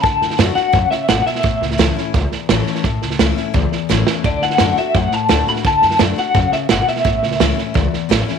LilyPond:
<<
  \new Staff \with { instrumentName = "Clean electric guitar" } { \time 4/4 \key a \major \tempo 4 = 171 a''4 r8 fis''4 e''8 fis''8 e''8~ | e''2~ e''8 r4. | r1 | d''8 fis''4 e''8 fis''8 a''4 b''8 |
a''4 r8 fis''4 e''8 fis''8 e''8~ | e''2~ e''8 r4. | }
  \new Staff \with { instrumentName = "Steel-string acoustic guitar" } { \time 4/4 \key a \major << { r4 <d a d' fis'>8 <d' fis'>8 r2 | r4 <e a cis' e'>8 <cis' e'>8 r4 <e a cis' e'>4 | r4 <e a cis' e'>8 <cis' e'>8 r4 <e a cis' e'>4 | r4 <d a d' fis'>8 <d' fis'>8 r4 <d a d' fis'>8 <d' fis'>8 |
r4 <d a d' fis'>8 <d' fis'>8 r2 | r4 <e a cis' e'>8 <cis' e'>8 r4 <e a cis' e'>8 <cis' e'>8 | } \\ { d2 cis4 b,4 | a,2 e,2 | a,2 e,2 | d2 a,2 |
d2 cis4 b,4 | a,2 e,2 | } >> }
  \new Staff \with { instrumentName = "Upright bass" } { \clef bass \time 4/4 \key a \major d,8 fis,8 fis,8 r8 fis,8 r8 gis,,8 r8 | a,,8 cis,8 cis,8 r8 cis,8 r8 a,,8 r8 | a,,8 cis,8 cis,8 r8 cis,8 r8 a,,8 r8 | d,8 fis,8 fis,8 r8 fis,8 r8 d,8 r8 |
d,8 fis,8 fis,8 r8 fis,8 r8 g,,8 r8 | a,,8 cis,8 cis,8 r8 cis,8 r8 a,,8 r8 | }
  \new DrumStaff \with { instrumentName = "Drums" } \drummode { \time 4/4 <bd sn>8 sn16 sn16 <hhp sn>8 sn8 <bd sn>8 sn8 <hhp sn>8 sn16 sn16 | <bd sn>8 sn16 sn16 <hhp sn>8 sn8 <bd sn>8 sn8 <hhp sn>8 sn16 sn16 | <bd sn>8 sn16 sn16 <hhp sn>8 sn8 <bd sn>8 sn8 <hhp sn>8 sn8 | <bd sn>8 sn16 sn16 <hhp sn>8 sn8 <bd sn>8 sn8 <hhp sn>8 sn16 sn16 |
<bd sn>8 sn16 sn16 <hhp sn>8 sn8 <bd sn>8 sn8 <hhp sn>8 sn16 sn16 | <bd sn>8 sn16 sn16 <hhp sn>8 sn8 <bd sn>8 sn8 <hhp sn>8 sn8 | }
>>